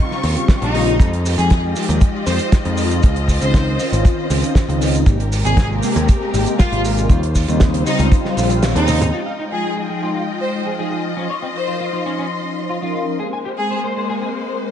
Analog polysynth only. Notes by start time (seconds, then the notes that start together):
Already playing: C#3 G3 C4 F4
0.36 C#3 G3 C4 F4
0.62 C#3 G3 C4 D#4
0.74 C#3 G3 C4 F4
0.99 F3 G#3 D#4 G4
1.38 F3 G#3 D#4 F4
1.75 F3 G#3 D#4 G4
2.26 F3 G#3 D#4 G4
2.65 F3 G#3 D#4 F4
3.03 D#3 C4 C#4 F4
3.42 D#3 C4 C#4 D#4
3.80 D#3 C4 C#4 F4
4.30 D#3 C4 C#4 F4
4.68 D#3 C4 C#4 D#4
5.06 C3 G#3 A#3 G4
5.44 C3 G#3 A#3 F4
5.82 C3 G#3 A#3 G4
6.33 C3 G#3 A#3 G4
6.72 C3 G#3 A#3 F4
7.09 C#3 G3 C4 F4
7.48 C#3 G3 C4 D#4
7.86 C#3 G3 C4 F4
8.37 C#3 G3 C4 F4
8.75 C#3 G3 C4 D#4
9.13 F3 G#3 D#4 G4
9.52 F3 G#3 D#4 F4
9.89 F3 G#3 D#4 G5
10.40 F3 G#3 D#4 G5
10.78 F3 G#3 D#4 F4
11.16 F3 C#4 D#4 C5
11.54 F3 D#4 A#4
11.92 F3 D#4 C6
12.43 F3 C#4 D#4 C5
12.82 F3 C#4 D#4 A#4
13.20 G#3 C4 G4 A#4
13.58 G#3 C4 A#4
13.96 G#3 C4 A#4
14.47 G#3 C4 A#4 G5